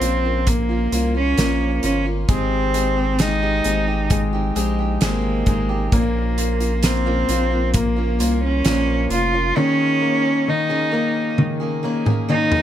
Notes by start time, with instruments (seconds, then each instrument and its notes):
Already playing: grand piano A#3, cello C4
0.00 sub bass A#1, steel-string acoustic guitar F3 A#3 C#4 F4, grand piano F4, closed hi-hat
0.24 steel-string acoustic guitar A#3 C#4 F4
0.47 grand piano A#3, cello A#3, kick, closed hi-hat
0.69 steel-string acoustic guitar A#3 C#4 F4
0.92 sub bass C2, steel-string acoustic guitar F3 A#3 C#4 F4, grand piano F4, closed hi-hat
1.15 steel-string acoustic guitar A#3 C#4 F4, cello C#4
1.37 sub bass A#1, steel-string acoustic guitar A#2 F3 A#3 C#4 F4, grand piano A#3, snare, closed hi-hat
1.83 sub bass G1, steel-string acoustic guitar F3 A#3 C#4 F4, cello C#4, grand piano F4, closed hi-hat
2.05 steel-string acoustic guitar A#3 C#4 F4
2.28 sub bass G#1, steel-string acoustic guitar G#3 C4 D#4 G4, grand piano G#3, cello C4, kick, closed hi-hat
2.74 grand piano G#3, closed hi-hat
2.97 steel-string acoustic guitar C4 D#4 G4
3.19 grand piano G#3, cello D#4, snare, closed hi-hat
3.42 steel-string acoustic guitar G#3 C4 D#4 G4
3.64 sub bass G#1, steel-string acoustic guitar G#3 C4 D#4 G4, grand piano G#3, closed hi-hat
3.87 steel-string acoustic guitar C4 D#4 G4
4.10 grand piano G#3, kick, closed hi-hat
4.33 steel-string acoustic guitar C4 D#4 G4
4.55 sub bass A#1, steel-string acoustic guitar G#3 C4 D#4 G4, grand piano G#3, closed hi-hat
4.78 steel-string acoustic guitar C4 D#4 G4
5.01 sub bass G#1, steel-string acoustic guitar G#3 C4 D#4 G4, grand piano G#3, cello A#3, snare, closed hi-hat
5.46 sub bass G#1, steel-string acoustic guitar G#3 C4 D#4 G4, grand piano G#3, kick, closed hi-hat
5.69 steel-string acoustic guitar C4 D#4 G4
5.92 sub bass A#1, steel-string acoustic guitar A#2 F3 A#3 C#4 F4, grand piano A#3, cello A#3, kick, closed hi-hat
6.38 grand piano F4, closed hi-hat
6.60 steel-string acoustic guitar A#3 C#4 F4, closed hi-hat
6.83 grand piano A#3, cello C4, snare, closed hi-hat
7.06 steel-string acoustic guitar A#2 F3 A#3 C#4 F4
7.28 sub bass A#1, steel-string acoustic guitar F3 A#3 C#4 F4, grand piano F4, closed hi-hat
7.51 steel-string acoustic guitar A#3 C#4 F4
7.74 grand piano A#3, cello A#3, kick, closed hi-hat
7.96 steel-string acoustic guitar A#3 C#4 F4
8.19 sub bass C2, steel-string acoustic guitar F3 A#3 C#4 F4, grand piano F4, closed hi-hat
8.45 cello C#4
8.64 sub bass A#1, steel-string acoustic guitar A#2 F3 A#3 C#4 F4, grand piano A#3, snare, closed hi-hat
9.10 sub bass F1, steel-string acoustic guitar F3 A#3 C#4 F4, grand piano F4, cello F4, closed hi-hat
9.33 steel-string acoustic guitar A#3 C#4 F4
9.56 steel-string acoustic guitar D#3 A#3 C#4 G#4, grand piano D#3, cello C#4
10.02 grand piano A#3
10.24 steel-string acoustic guitar A#3 C#4 G#4
10.48 grand piano D#3, cello D#4
10.69 steel-string acoustic guitar D#3 A#3 C#4 G#4
10.92 steel-string acoustic guitar D#3 A#3 C#4 G#4, grand piano A#3
11.38 grand piano D#3, high tom
11.60 steel-string acoustic guitar A#3 C#4 G#4
11.83 steel-string acoustic guitar D#3 A#3 C#4 G#4, grand piano A#3
12.05 steel-string acoustic guitar A#3 C#4 G#4, mid tom
12.29 steel-string acoustic guitar D#3 A#3 C#4 G#4, grand piano D#3, cello D#4
12.52 mid tom